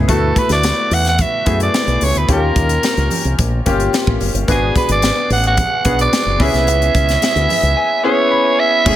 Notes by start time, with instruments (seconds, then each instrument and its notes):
Already playing: grand piano A3 G#4
0.08 fingered electric bass D2, grand piano A3 B3 E4 F#4, soprano saxophone A4, kick, closed hi-hat, muted conga
0.36 soprano saxophone B4, kick, closed hi-hat, muted conga
0.49 fingered electric bass D2, soprano saxophone D5, snare, closed hi-hat
0.63 snare, closed hi-hat, high conga
0.91 fingered electric bass E2, soprano saxophone F#5, open hi-hat, muted conga
1.05 soprano saxophone F#5, snare, closed hi-hat
1.18 soprano saxophone E5, kick, closed hi-hat, muted conga, low conga
1.45 fingered electric bass F#2, grand piano A3 B3 E4 G#4, kick, closed hi-hat
1.60 soprano saxophone D5, closed hi-hat
1.74 snare, closed hi-hat, high conga
1.87 fingered electric bass B1, closed hi-hat
2.01 fingered electric bass C#2, soprano saxophone C#5, open hi-hat, high conga
2.15 fingered electric bass D2, soprano saxophone B4, closed hi-hat
2.28 fingered electric bass D#2, grand piano A#3 C#4 F4 G4, kick, closed hi-hat, muted conga
2.32 soprano saxophone A#4
2.56 fingered electric bass D#2, kick, closed hi-hat, muted conga
2.69 closed hi-hat
2.83 snare, closed hi-hat, high conga
2.97 fingered electric bass C#2, closed hi-hat
3.11 open hi-hat, low conga
3.25 fingered electric bass C2, closed hi-hat
3.39 fingered electric bass A#1, kick, closed hi-hat, muted conga
3.66 fingered electric bass G1, grand piano A#3 C#4 F4 G4, kick, closed hi-hat
3.80 closed hi-hat
3.93 snare, closed hi-hat, high conga
4.07 fingered electric bass A1, kick
4.21 fingered electric bass F#1, open hi-hat, high conga
4.34 fingered electric bass G1, closed hi-hat
4.48 fingered electric bass G#1, grand piano B3 D4 F#4 G#4, soprano saxophone G#4, kick, closed hi-hat, muted conga
4.76 soprano saxophone B4, kick, closed hi-hat, muted conga
4.89 fingered electric bass G#1, soprano saxophone D5, closed hi-hat
5.02 snare, closed hi-hat, high conga
5.30 fingered electric bass A1, soprano saxophone F#5, open hi-hat, muted conga
5.44 soprano saxophone F#5, closed hi-hat
5.57 kick, closed hi-hat, muted conga, low conga
5.85 fingered electric bass B1, grand piano B3 D4 F#4 G#4, kick, closed hi-hat
5.99 soprano saxophone D5, closed hi-hat
6.13 snare, closed hi-hat, high conga
6.26 fingered electric bass F#1
6.39 fingered electric bass C#2, grand piano B3 C#4 E4 G#4, soprano saxophone E5, kick, open hi-hat, high conga
6.54 fingered electric bass C2, snare, closed hi-hat
6.67 fingered electric bass C#2, closed hi-hat, muted conga
6.82 closed hi-hat
6.94 fingered electric bass C#2, kick, closed hi-hat, muted conga
7.09 snare, closed hi-hat
7.22 snare, closed hi-hat, high conga
7.36 fingered electric bass D2, closed hi-hat
7.49 grand piano E5, open hi-hat, low conga
7.63 fingered electric bass C#2, closed hi-hat
7.77 grand piano G#5
8.03 grand piano B3 C#4 E4 G#4, soprano saxophone C#5
8.31 grand piano B5
8.59 soprano saxophone E5
8.85 fingered electric bass F#1, grand piano A3 C#4 E4 G#4, kick, crash, muted conga